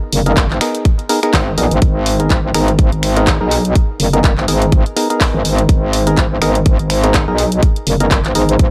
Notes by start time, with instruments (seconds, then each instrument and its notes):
0.13 wobble bass F#1, open hi-hat
0.26 synth stab B3 D#4 G#4 A#4, closed hi-hat
0.37 kick, clap, closed hi-hat
0.50 wobble bass G#1, clap
0.61 synth stab B3 D#4 G#4 A#4, finger snap, open hi-hat
0.75 closed hi-hat
0.85 kick, closed hi-hat
0.99 closed hi-hat
1.09 synth stab B3 D#4 G#4 A#4, open hi-hat
1.23 synth stab B3 D#4 G#4 A#4, finger snap, closed hi-hat
1.34 wobble bass G#1, kick, clap, open hi-hat
1.58 wobble bass A#1, synth stab B3 D#4 G#4 A#4, open hi-hat
1.71 wobble bass G#1, closed hi-hat
1.82 wobble bass G#1, kick, closed hi-hat
2.06 open hi-hat
2.20 synth stab B3 D#4 G#4 A#4, closed hi-hat
2.30 wobble bass G#1, kick, clap, closed hi-hat
2.54 wobble bass G#1, synth stab B3 D#4 G#4 A#4, finger snap, open hi-hat
2.68 closed hi-hat
2.79 kick, closed hi-hat
2.92 wobble bass G#1, closed hi-hat
3.03 finger snap, open hi-hat
3.17 synth stab B3 D#4 G#4 A#4, closed hi-hat
3.27 kick, clap, closed hi-hat
3.41 wobble bass B1, synth stab B3 D#4 G#4 A#4
3.51 open hi-hat
3.65 closed hi-hat
3.75 kick, closed hi-hat
4.00 wobble bass F#1, open hi-hat
4.13 synth stab B3 D#4 G#4 A#4, closed hi-hat
4.24 kick, clap, closed hi-hat
4.37 wobble bass G#1, clap
4.48 wobble bass G#1, synth stab B3 D#4 G#4 A#4, open hi-hat
4.62 closed hi-hat
4.72 kick, closed hi-hat
4.86 closed hi-hat
4.96 synth stab B3 D#4 G#4 A#4, open hi-hat
5.10 synth stab B3 D#4 G#4 A#4, closed hi-hat
5.21 kick, clap, open hi-hat
5.34 wobble bass G#1
5.45 wobble bass G#1, open hi-hat
5.59 closed hi-hat
5.69 wobble bass G#1, kick, closed hi-hat
5.93 open hi-hat
6.07 synth stab B3 D#4 G#4 A#4, closed hi-hat
6.17 wobble bass G#1, kick, clap, closed hi-hat
6.42 wobble bass G#1, synth stab B3 D#4 G#4 A#4, finger snap, open hi-hat
6.55 closed hi-hat
6.66 kick, closed hi-hat
6.79 wobble bass G#1, closed hi-hat
6.90 finger snap, open hi-hat
7.04 synth stab B3 D#4 G#4 A#4, closed hi-hat
7.14 kick, clap, closed hi-hat
7.28 wobble bass B1, synth stab B3 D#4 G#4 A#4
7.38 open hi-hat
7.52 closed hi-hat
7.63 kick, closed hi-hat
7.76 closed hi-hat
7.87 wobble bass F#1, open hi-hat
8.00 synth stab B3 D#4 G#4 A#4, closed hi-hat
8.11 kick, clap, closed hi-hat
8.25 wobble bass G#1, clap, closed hi-hat
8.35 wobble bass G#1, synth stab B3 D#4 G#4 A#4, open hi-hat
8.49 closed hi-hat
8.59 wobble bass G#1, kick, closed hi-hat